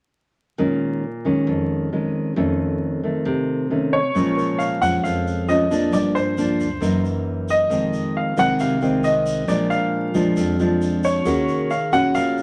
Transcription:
0.58 nylon-string guitar A#2 D#3 G#3 C#4
1.25 nylon-string guitar D#3 G#3 C#4
1.47 nylon-string guitar F2
1.93 nylon-string guitar D#3 G#3 C#4
2.36 nylon-string guitar F2 D#3 A3 C#4
3.03 nylon-string guitar D#3 A3
3.25 nylon-string guitar C3
3.70 nylon-string guitar D#3 A3 C#4
3.93 grand piano C#5
4.15 upright bass A#1, nylon-string guitar A#2 F3 G#3 C#4, shaker
4.37 tine electric piano A#4, shaker
4.59 grand piano F5, shaker
4.82 upright bass F2, nylon-string guitar F3 G#3 C#4, grand piano F#5, shaker
5.04 upright bass F2, nylon-string guitar F2, grand piano F5, shaker
5.27 shaker
5.48 nylon-string guitar F3 G#3 C#4, grand piano D#5, shaker
5.70 nylon-string guitar F3 A#3 D4, shaker
5.92 upright bass G1, nylon-string guitar G2, grand piano D5, shaker
6.15 grand piano C5, shaker
6.37 nylon-string guitar F3 A#3 D4, shaker
6.60 upright bass D2, shaker
6.80 upright bass F#1, nylon-string guitar F#2 E3 A#3 D#4, shaker
7.05 shaker
7.49 grand piano D#5, shaker
7.70 upright bass F1, nylon-string guitar F2 D#3 G#3 C4, shaker
7.93 shaker
8.17 grand piano F5
8.37 upright bass C2, nylon-string guitar D#3 G#3 C4, grand piano F#5, shaker
8.59 upright bass C2, nylon-string guitar C3, grand piano F5, shaker
8.82 nylon-string guitar D#3 G#3 C4, shaker
9.04 grand piano D#5, shaker
9.26 shaker
9.48 upright bass A#1, nylon-string guitar A#2 F3 G#3 D4, grand piano D5, shaker
9.70 grand piano F5, shaker
10.14 upright bass F2, nylon-string guitar F3 G#3 D4, shaker
10.37 upright bass F2, nylon-string guitar F2, shaker
10.59 nylon-string guitar F3 G#3 D4, shaker
10.81 shaker
11.04 grand piano C#5, shaker
11.25 upright bass D#2, nylon-string guitar D#3 A#3 C#4 F#4, tine electric piano G#4, shaker
11.48 shaker
11.70 grand piano F5, shaker
11.92 upright bass A#1, nylon-string guitar A#3 C#4 F#4, grand piano F#5, shaker
12.14 upright bass A#1, nylon-string guitar A#2, grand piano F5, shaker
12.38 shaker

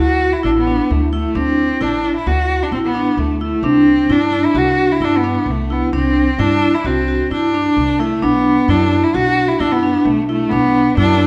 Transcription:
Already playing: vibraphone E4
0.00 upright bass D2, vibraphone F#4, cello F#4
0.21 vibraphone F#4
0.33 cello E4
0.43 upright bass A1, cello D4, vibraphone E4
0.57 cello B3
0.67 vibraphone D4
0.90 upright bass D2, cello A3
1.13 cello A3, vibraphone E4
1.35 upright bass D2, cello C4, vibraphone D4
1.81 upright bass A1, cello D4, vibraphone E4
2.04 vibraphone E4
2.16 cello E4
2.26 upright bass D2, vibraphone F#4, cello F#4
2.50 vibraphone F#4
2.63 cello D4
2.71 upright bass A1, cello C4, vibraphone E4
2.85 cello B3
2.95 vibraphone D4
3.17 upright bass D2, cello A3
3.41 cello A3, vibraphone E4
3.63 upright bass C2, cello C4, vibraphone D4
4.09 upright bass G2, cello D4, vibraphone E4
4.33 vibraphone E4
4.46 cello E4
4.54 upright bass C2, vibraphone F#4, cello F#4
4.79 vibraphone F#4
4.92 cello E4
5.00 upright bass G2, cello D4, vibraphone E4
5.17 cello B3
5.24 vibraphone D4
5.46 upright bass C2
5.50 cello A3
5.70 cello B3, vibraphone E4
5.93 upright bass C2, cello C4, vibraphone D4
6.39 upright bass G2, cello D4, vibraphone E4
6.62 vibraphone E4
6.75 cello E4
6.84 upright bass C2, cello C4, vibraphone F#4
7.08 vibraphone F#4
7.31 upright bass G2, cello D4, vibraphone E4
7.54 vibraphone D4
7.77 upright bass C2
7.99 cello A3, vibraphone E4
8.22 upright bass B1, cello B3, vibraphone D4
8.68 upright bass F#2, cello D4, vibraphone E4
8.91 vibraphone E4
9.04 cello E4
9.14 upright bass B1, vibraphone F#4, cello F#4
9.37 vibraphone F#4
9.48 cello E4
9.60 upright bass F#2, cello D4, vibraphone E4
9.72 cello B3
9.83 vibraphone D4
10.05 upright bass B1, cello A3
10.29 cello A3, vibraphone E4
10.50 upright bass B1, cello B3, vibraphone D4
10.97 upright bass F#2, cello D4, vibraphone E4
11.21 vibraphone E4

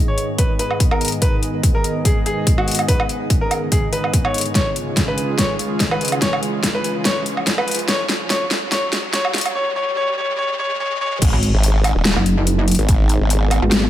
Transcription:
Already playing: supersaw synth G#2 D#3 B3 G#4 D#5, riser
0.08 grand piano C#5
0.18 closed hi-hat
0.38 grand piano B4, kick, closed hi-hat
0.59 grand piano B4, closed hi-hat
0.71 low woodblock
0.80 kick, closed hi-hat
0.91 grand piano A#4, low woodblock
1.01 closed hi-hat
1.05 closed hi-hat
1.08 closed hi-hat
1.12 closed hi-hat
1.22 grand piano B4, kick, closed hi-hat
1.43 closed hi-hat
1.63 kick, closed hi-hat
1.75 grand piano A#4
1.84 closed hi-hat
2.05 grand piano G#4, kick, closed hi-hat
2.26 grand piano G#4, closed hi-hat
2.47 kick, closed hi-hat
2.58 grand piano F#4, low woodblock
2.68 closed hi-hat
2.71 closed hi-hat
2.75 closed hi-hat
2.79 closed hi-hat, low woodblock
2.88 grand piano B4, kick, closed hi-hat
3.00 low woodblock
3.09 closed hi-hat
3.30 kick, closed hi-hat
3.41 grand piano A#4
3.51 closed hi-hat, low woodblock
3.72 grand piano G#4, kick, closed hi-hat
3.93 grand piano B4, closed hi-hat
4.04 low woodblock
4.14 kick, closed hi-hat
4.25 grand piano C#5, low woodblock
4.34 closed hi-hat
4.38 closed hi-hat
4.41 closed hi-hat
4.55 supersaw synth C#2 C#3 G#3 F4 G#4, grand piano C#5, kick, snare, closed hi-hat
4.76 closed hi-hat
4.97 kick, snare, closed hi-hat
5.08 grand piano B4
5.18 closed hi-hat
5.38 grand piano C#5, kick, snare, closed hi-hat
5.59 closed hi-hat
5.80 kick, snare, closed hi-hat
5.91 grand piano B4, low woodblock
6.01 closed hi-hat
6.05 closed hi-hat
6.08 closed hi-hat
6.12 low woodblock
6.22 grand piano C#5, kick, snare, closed hi-hat
6.33 low woodblock
6.43 closed hi-hat
6.63 kick, snare, closed hi-hat
6.75 grand piano B4
6.84 closed hi-hat
7.05 grand piano C#5, kick, snare, closed hi-hat
7.26 closed hi-hat
7.37 low woodblock
7.47 kick, snare, closed hi-hat
7.58 grand piano B4, low woodblock
7.68 closed hi-hat
7.71 closed hi-hat
7.75 closed hi-hat
7.79 closed hi-hat
7.88 grand piano C#5, kick, snare, closed hi-hat
8.09 snare, closed hi-hat
8.30 grand piano C#5, kick, snare, closed hi-hat
8.51 snare, closed hi-hat
8.72 grand piano C#5, kick, snare, closed hi-hat
8.93 snare, closed hi-hat
9.14 grand piano C#5, kick, snare, closed hi-hat
9.25 low woodblock
9.34 snare, closed hi-hat
9.38 closed hi-hat
9.41 closed hi-hat
9.46 closed hi-hat, low woodblock
9.55 grand piano C#5
9.76 grand piano C#5
9.97 grand piano C#5
10.18 grand piano C#5
10.39 grand piano C#5
10.59 grand piano C#5
10.80 grand piano C#5
11.01 grand piano C#5
11.22 wobble bass G#1, supersaw synth B3 D#4 G#4, kick, closed hi-hat, crash, sub drop
11.33 wobble bass G#1
11.43 closed hi-hat
11.54 wobble bass G#1
11.63 closed hi-hat
11.84 closed hi-hat, low woodblock
11.96 wobble bass D#1
12.05 snare, closed hi-hat
12.16 wobble bass F#1, low woodblock
12.26 closed hi-hat
12.47 closed hi-hat
12.68 closed hi-hat
12.71 closed hi-hat
12.75 closed hi-hat
12.79 wobble bass G#1
12.89 kick, closed hi-hat
13.09 closed hi-hat
13.21 wobble bass G#1
13.30 closed hi-hat
13.51 closed hi-hat, low woodblock
13.62 wobble bass G#1
13.72 snare, closed hi-hat

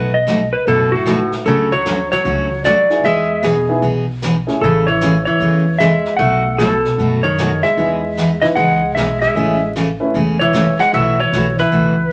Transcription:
Already playing: upright bass B1, steel-string acoustic guitar B2 F#3 A3 D#4 F#4, electric slide guitar B4
0.14 electric slide guitar D#5
0.27 steel-string acoustic guitar B2 F#3 A3 D#4 F#4, snare, hi-hat pedal
0.53 electric slide guitar B4
0.67 upright bass F#1, steel-string acoustic guitar B2 F#3 A3 D#4 F#4, hollow-body jazz guitar B2, electric slide guitar A4, brush sweep
0.92 hollow-body jazz guitar A2, electric slide guitar F#4
1.06 steel-string acoustic guitar B2 F#3 A3 D#4 F#4, upright piano A3 B3 D#4 F#4, snare, hi-hat pedal
1.32 snare
1.45 upright bass D2, hollow-body jazz guitar C#3, steel-string acoustic guitar D3 F#3 A3 C#4 F#4, electric slide guitar A4, brush sweep
1.72 hollow-body jazz guitar F#3, electric slide guitar C#5
1.86 steel-string acoustic guitar D3 F#3 A3 C#4 F#4, snare, hi-hat pedal
2.11 hollow-body jazz guitar F#3, electric slide guitar C#5, snare
2.25 upright bass C#2, steel-string acoustic guitar D3 F#3 A3 C#4 F#4, brush sweep
2.64 upright bass D2, steel-string acoustic guitar D3 F#3 A3 C#4 F#4, hollow-body jazz guitar F#3, electric slide guitar D5, snare, hi-hat pedal
2.90 upright piano B3 D#4 E4 G#4, snare
3.04 upright bass E2, steel-string acoustic guitar E3 B3 D#4 G#4, hollow-body jazz guitar G#3, electric slide guitar E5, brush sweep
3.43 hollow-body jazz guitar B2, steel-string acoustic guitar E3 B3 D#4 G#4, electric slide guitar G#4, snare, hi-hat pedal
3.69 upright piano B3 D#4 E4 G#4
3.82 upright bass B1, steel-string acoustic guitar E3 B3 D#4 G#4, brush sweep
4.22 steel-string acoustic guitar E3 B3 D#4 G#4, snare, hi-hat pedal
4.47 upright piano A3 C#4 E4 G#4, snare
4.61 upright bass A1, steel-string acoustic guitar C#3 E3 A3 C#4 G#4, hollow-body jazz guitar C#3, electric slide guitar A4, brush sweep
4.87 hollow-body jazz guitar E3, electric slide guitar C#5
5.01 steel-string acoustic guitar C#3 E3 A3 C#4 G#4, snare, hi-hat pedal
5.25 hollow-body jazz guitar E3, electric slide guitar C#5
5.40 upright bass E2, steel-string acoustic guitar C#3 E3 A3 C#4 G#4, brush sweep
5.78 steel-string acoustic guitar C#3 E3 A3 C#4 G#4, hollow-body jazz guitar G#3, electric slide guitar E5, snare, hi-hat pedal
6.05 snare
6.17 upright bass B1, steel-string acoustic guitar B2 F#3 D#4, hollow-body jazz guitar A3, electric slide guitar F#5, brush sweep
6.21 steel-string acoustic guitar A3 F#4
6.58 hollow-body jazz guitar B2, steel-string acoustic guitar B2 F#3 A3 D#4 F#4, electric slide guitar A4, snare, hi-hat pedal
6.85 snare
6.98 upright bass F#2, steel-string acoustic guitar B2 F#3 A3 D#4 F#4, brush sweep
7.23 hollow-body jazz guitar D#3, electric slide guitar C#5
7.38 steel-string acoustic guitar B2 F#3 A3 D#4 F#4, snare, hi-hat pedal
7.63 hollow-body jazz guitar G#3, electric slide guitar E5, snare
7.77 upright bass E2, steel-string acoustic guitar E3 B3 D#4 G#4, upright piano B3 D#4 E4 G#4, brush sweep
8.17 steel-string acoustic guitar E3 B3 D#4 G#4, snare, hi-hat pedal
8.41 hollow-body jazz guitar E3, upright piano B3 D#4 E4 B4, electric slide guitar D#5, snare
8.55 upright bass C#2, steel-string acoustic guitar E3 B3 D#4 G#4, hollow-body jazz guitar G#3, electric slide guitar F#5, brush sweep
8.95 upright bass B1, steel-string acoustic guitar E3 B3 D#4 G#4, hollow-body jazz guitar G#3, electric slide guitar E5, snare, hi-hat pedal
9.22 hollow-body jazz guitar G#3, electric slide guitar E5, snare
9.35 upright bass A1, steel-string acoustic guitar C#3 E3 A3 C#4 G#4, upright piano A3 C#4 E4 G#4, brush sweep
9.76 steel-string acoustic guitar C#3 E3 A3 C#4 G#4, snare, hi-hat pedal
10.00 upright piano A3 C#4 E4 B4
10.14 upright bass E1, steel-string acoustic guitar C#3 E3 A3 C#4 G#4, brush sweep
10.39 hollow-body jazz guitar E3, electric slide guitar C#5
10.53 steel-string acoustic guitar C#3 E3 A3 C#4 G#4, snare, hi-hat pedal
10.79 hollow-body jazz guitar G#3, electric slide guitar F#5, snare
10.93 upright bass B1, steel-string acoustic guitar B2 E3 A3 E4 F#4, hollow-body jazz guitar F#3, upright piano B3 E4 F#4 A4, electric slide guitar E5, brush sweep
11.19 hollow-body jazz guitar E3, electric slide guitar C#5
11.32 upright bass B1, steel-string acoustic guitar B2 E3 A3 E4 F#4, snare, hi-hat pedal
11.58 hollow-body jazz guitar E3, electric slide guitar B4, snare
11.72 upright bass C#2, steel-string acoustic guitar B2 E3 A3 E4 F#4, brush sweep

